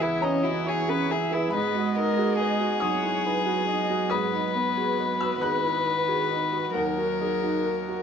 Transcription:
Already playing: C#2 E3 B3 E4 G#4 B4 E5 G#5
0.00 E4 G#4
0.21 C#4 E4 D#5 A#5
0.44 E4 F#4
0.65 E4 G#4 C#5
0.88 C#4 G#4 B4
1.09 E4 G#4 E5
1.30 E4 G#4 B4
1.50 G#2 G#3 F#4 G#4 D#5 B5
1.54 B3 B4
1.74 F#4 D#5
1.96 D#4 A#4
2.17 F#4 G#4
2.39 G#4 B4 D#5
2.60 F#4
2.80 F#3 D#4 G#4 C#5 D#6
3.03 E4
3.24 D#4 B4
3.45 F#4 G#4
3.67 D#4 D#5
3.90 F#4 F#5
4.10 G#2 G#4 B4 D#6
4.34 D#4 D#5
4.55 B3
4.77 F#4 G#4
4.98 B4 D#5
5.21 F#4 E6
5.42 D#3 D#4 G#4 B4 F#6
5.64 E4
5.86 D#4 B4
6.08 F#4 G#4
6.30 D#4 D#5
6.52 F#4 F#5
6.74 D#2 F#3 A#3 D#4 F#4 A#4 D#5 F#5
6.97 F#4 A#4
7.21 D#4 G#4
7.42 D#4 F#4
7.65 A#4
7.88 F#4

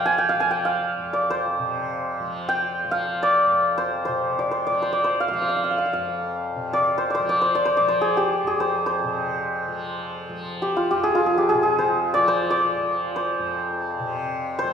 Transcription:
Already playing: F2 C3 F3 C5 D5 F5 G5
0.06 G#5
0.18 G5
0.29 F5
0.35 F3
0.40 G#5
0.51 G5
0.65 F5
0.99 F2
1.13 D5
1.30 C5
1.59 C3
2.20 F3
2.49 G5
2.84 F3
2.91 F5
3.23 D5
3.46 F2
3.78 C5
4.05 C3 C5
4.39 D5
4.51 C5
4.67 F3 D5
4.82 C5
4.93 D5
5.04 C5
5.20 F5
5.28 F3 F5
5.34 F5
5.42 F5
5.49 F5
5.56 F5
5.64 F5
5.71 F5
5.78 F5
5.86 F5
5.93 F2 F5
6.56 C3
6.73 D5
6.98 C5
7.10 D5
7.15 C5
7.20 F3
7.29 D5
7.41 C5
7.55 D5
7.65 C5
7.77 F3 D5
7.88 C5
8.01 G#4
8.17 G4
8.43 F2 G#4
8.60 C5
8.86 C5
9.04 C3
9.68 F3
10.29 F3
10.62 G4
10.77 F4
10.91 F2 G4
11.03 G#4
11.15 F4
11.26 G#4
11.38 G4
11.49 G#4
11.53 C3
11.63 G#4
11.79 C5
12.14 F3 D5
12.28 C5
12.50 D5
12.77 F3
13.16 C5
13.39 F2
14.00 C3
14.59 C5
14.64 F3

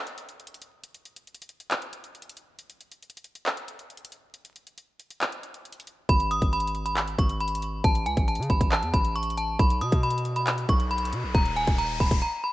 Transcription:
0.07 closed hi-hat
0.18 closed hi-hat
0.29 closed hi-hat
0.40 closed hi-hat
0.47 closed hi-hat
0.54 closed hi-hat
0.62 closed hi-hat
0.84 closed hi-hat
0.94 closed hi-hat
1.05 closed hi-hat
1.16 closed hi-hat
1.27 closed hi-hat
1.35 closed hi-hat
1.42 closed hi-hat
1.49 closed hi-hat
1.60 closed hi-hat
1.71 clap, closed hi-hat
1.82 closed hi-hat
1.93 closed hi-hat
2.04 closed hi-hat
2.15 closed hi-hat
2.22 closed hi-hat
2.29 closed hi-hat
2.37 closed hi-hat
2.59 closed hi-hat
2.70 closed hi-hat
2.81 closed hi-hat
2.92 closed hi-hat
3.03 closed hi-hat
3.10 closed hi-hat
3.17 closed hi-hat
3.24 closed hi-hat
3.35 closed hi-hat
3.46 clap, closed hi-hat
3.57 closed hi-hat
3.68 closed hi-hat
3.79 closed hi-hat
3.90 closed hi-hat
3.97 closed hi-hat
4.05 closed hi-hat
4.12 closed hi-hat
4.34 closed hi-hat
4.45 closed hi-hat
4.56 closed hi-hat
4.67 closed hi-hat
4.78 closed hi-hat
5.00 closed hi-hat
5.11 closed hi-hat
5.21 clap, closed hi-hat
5.32 closed hi-hat
5.43 closed hi-hat
5.54 closed hi-hat
5.65 closed hi-hat
5.72 closed hi-hat
5.80 closed hi-hat
5.87 closed hi-hat
6.09 G#1 B5, kick, closed hi-hat
6.20 closed hi-hat
6.31 D#6, closed hi-hat
6.42 G#1, kick, closed hi-hat
6.53 B5, closed hi-hat
6.60 closed hi-hat
6.67 closed hi-hat
6.75 closed hi-hat
6.86 B5, closed hi-hat
6.97 clap, closed hi-hat
7.08 closed hi-hat
7.19 G#1 C#6, kick, closed hi-hat
7.29 closed hi-hat
7.40 B5, closed hi-hat
7.48 closed hi-hat
7.55 closed hi-hat
7.62 closed hi-hat
7.84 A1 A5, kick, closed hi-hat
7.95 closed hi-hat
8.06 C#2 G#5, closed hi-hat
8.17 A1, kick, closed hi-hat
8.28 A5, closed hi-hat
8.35 C#3, closed hi-hat
8.43 closed hi-hat
8.50 A1 B5, kick, closed hi-hat
8.61 A1, kick, closed hi-hat
8.72 A5, clap, closed hi-hat
8.83 E2, closed hi-hat
8.94 A1 B5, kick, closed hi-hat
9.05 closed hi-hat
9.16 C#6, closed hi-hat
9.23 closed hi-hat
9.30 closed hi-hat
9.37 A5, closed hi-hat
9.59 B1 B5, kick, closed hi-hat, riser
9.70 closed hi-hat
9.81 B2 D#6, closed hi-hat
9.92 B2, kick, closed hi-hat
10.03 B5, closed hi-hat
10.10 closed hi-hat
10.18 closed hi-hat
10.25 closed hi-hat
10.36 B5, closed hi-hat
10.47 clap, closed hi-hat
10.58 closed hi-hat
10.69 B1 C#6, kick, closed hi-hat
10.80 closed hi-hat
10.91 B5, closed hi-hat
10.98 closed hi-hat
11.05 closed hi-hat
11.13 B2, closed hi-hat
11.24 B1
11.35 D#1 A#5, kick, closed hi-hat
11.46 closed hi-hat
11.56 G#5, closed hi-hat
11.67 D#1, kick, closed hi-hat
11.78 A#5, closed hi-hat
12.00 D#1 B5, kick, closed hi-hat
12.11 D#1, kick, closed hi-hat
12.22 A#5
12.44 B5

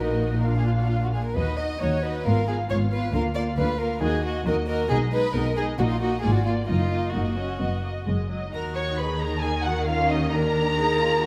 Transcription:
Already playing: A#1 A#2
0.00 D#4 F#4 A#4 D#5
0.44 D4 F4 F5
0.57 G#4
0.66 F4
0.81 F#4
0.89 F4
1.03 F#4
1.14 G#4
1.25 A#4
1.33 D#2 D#4 F#4 B4 D#5
1.57 D#4 F#4 D#5
1.79 D#2 D#4 F#4 C#5 D#5
2.03 D#4 F#4 B4 D#5
2.25 G#1 G#2 B3 F4 A#4 F5
2.47 B3 F4 G#4 F5
2.69 G#1 G#2 B3 F4 C#5 F5
2.91 B3 F4 B4 F5
3.13 D2 D3 A#3 F4 A#4 F5
3.35 A#3 F4 D5 F5
3.57 D2 D3 A#3 F4 B4 F5
3.79 A#3 F4 A#4 F5
4.02 D#2 D#3 A#3 F#4 G#4 D#5
4.25 A#3 F#4 D#5
4.46 D#2 D#3 A#3 F#4 A#4 D#5
4.68 A#3 F#4 A#4 D#5
4.90 B1 B2 G#3 D#4 G#4 D#5
5.12 G#3 D#4 B4 D#5
5.34 B1 B2 G#3 D#4 A#4 D#5
5.56 G#3 D#4 G#4 D#5
5.78 A#1 A#2 A#3 D#4 F#4 D#5
5.89 F4
6.00 A#3 D#4 F#4 D#5
6.22 G#1 G#2 A#3 F4 G#4 D5
6.35 F#4
6.44 A#3 F4 D5
6.67 F#1 F#2 A#3 D#4 F4 D#5
6.91 A#3 D#4 D#5
7.13 F#1 F#2 A#3 F#4 D#5
7.37 C#4 D#5
7.60 F#1 F#2 B3 D#5
7.82 A#3 D#5
8.06 F#1 F#2 G#3 D#5
8.29 F#3 D#5
8.51 D#2 D#3 D#4 F#4 A#4 A#5
8.75 C#5 C#6
8.97 G#4 B4 B5
9.20 A#4 A#5
9.42 G#4 A#4 G#5
9.64 F#4 F#5
9.86 C#4 F4 F5
10.09 D#4 D#5
10.32 D4 A#4 A#5
10.78 D#4 G#4
11.00 F4
11.22 F#4

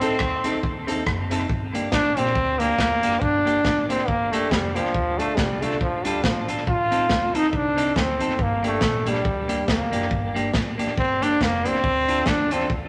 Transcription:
Already playing: A1 C4
0.01 A3 C4 D#4 A4, closed hi-hat
0.19 D#2, kick, cross-stick
0.44 A3 C4 D#4 A4, closed hi-hat
0.63 D#2, kick
0.87 A3 C4 D#4 A4, closed hi-hat
1.06 F#1, kick, cross-stick
1.30 A3 C4 D#4 A4, closed hi-hat
1.49 G1, kick
1.74 A#3 D4 G4, closed hi-hat
1.92 A1 D4, kick, snare
2.17 A#1 A#3 C4 D4 G4, closed hi-hat
2.35 D2, kick
2.59 A#3 D4 G4, closed hi-hat
2.78 D#2, kick, snare
3.02 F#1 A#3 D4 G4, closed hi-hat
3.21 G1 D4, kick
3.45 A#3 D4 G4, closed hi-hat
3.65 A1, kick, snare
3.89 A#3 C4 D4 G4, closed hi-hat
4.07 G1 A#3, kick
4.32 A3 A#3 D4 G4, closed hi-hat
4.51 F1 G3, kick, snare
4.75 C#2 F3 A#3 D4 G4, closed hi-hat
4.94 D2, kick
5.18 A3 D4 F4 A4, closed hi-hat
5.36 C2 G3, kick, snare
5.62 A3 D4 F4 A4, closed hi-hat
5.81 D2 F3, kick
6.05 G3 D4 F4 A4, closed hi-hat
6.24 A1 F3, kick, snare
6.48 D4 F4 A4, closed hi-hat
6.67 A1 F4, kick
6.91 C4 D#4 A4, closed hi-hat
7.09 D2, kick, snare
7.34 C4 D#4 A4, closed hi-hat
7.49 D#4, kick
7.53 C2 D4
7.76 C4 D#4 A4, closed hi-hat
7.96 D2 C4, kick, snare
8.19 F#1 C4 D#4 A4, closed hi-hat
8.39 G1 A#3, kick
8.63 A3 A#3 D4 G4, closed hi-hat
8.81 A#1, kick, snare
9.06 G3 A#3 D4 G4, closed hi-hat
9.25 D2, kick
9.48 A#3 D4 G4, closed hi-hat
9.68 D#2 A#3, kick, snare
9.92 F#1 A#3 D4 G4, closed hi-hat
10.11 G1, kick
10.34 A#3 D4 G4, closed hi-hat
10.54 A1, kick, snare
10.78 A#3 D4 G4, closed hi-hat
10.97 G1 C4, kick
11.21 A#3 D4 G4, closed hi-hat
11.41 F1 A#3, kick, snare
11.64 C#2 A#3 C4 D4 G4, closed hi-hat
11.84 D2, kick
12.08 D4 F4 A4, closed hi-hat
12.26 D#2 D4, kick, snare
12.51 C4 D4 F4 A4, closed hi-hat
12.70 D2, kick

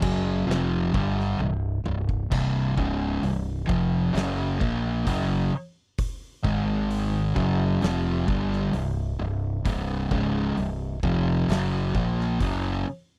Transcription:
0.01 F#1 F#2 C#3 F#3, kick, crash
0.47 F1 F2 C3 F3
0.51 snare
0.94 G1 G2 D3 G3, kick
1.20 snare
1.39 C1 C2 G2, high tom
1.84 C1 C2 G2, mid tom
2.09 kick
2.31 C1 C2 G2 C3, kick, crash, splash
2.77 C#1 C#2 G#2 C#3, kick
3.22 C1 C2 G2, open hi-hat
3.68 F1 F2 C3 F3, kick
4.14 F#1 F#2 C#3 F#3, snare, open hi-hat
4.60 A#1 A#2 F3 A#3, kick
5.06 F#1 F#2 C#3 F#3, kick, open hi-hat
5.98 kick, open hi-hat
6.43 G#1 G#2 D#3 G#3, kick
6.90 open hi-hat
7.35 F#1 F#2 C#3 F#3, kick
7.81 F1 F2 C3 F3, snare, open hi-hat
8.27 G1 G2 D3 G3, kick
8.53 snare
8.73 C1 C2 G2, open hi-hat
9.19 C1 C2 G2
9.65 C1 C2 G2 C3, kick, open hi-hat
10.11 C#1 C#2 G#2 C#3, kick
10.57 C1 C2 G2, open hi-hat
11.03 F1 F2 C3 F3, kick
11.48 F#1 F#2 C#3 F#3, snare, open hi-hat
11.95 A#1 A#2 F3 A#3, kick
12.20 snare
12.40 F#1 F#2 C#3 F#3, kick, open hi-hat

